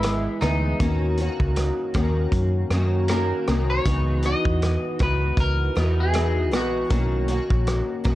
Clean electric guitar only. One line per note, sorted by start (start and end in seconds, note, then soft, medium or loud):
0.00 0.37 E4 medium
0.41 2.66 D#4 medium
3.10 3.70 A#4 medium
3.70 4.25 C#5 medium
4.26 4.97 D#5 loud
5.03 5.40 B4 medium
5.40 6.00 A#4 loud
6.00 6.55 G#4 medium
6.56 8.15 F#4 medium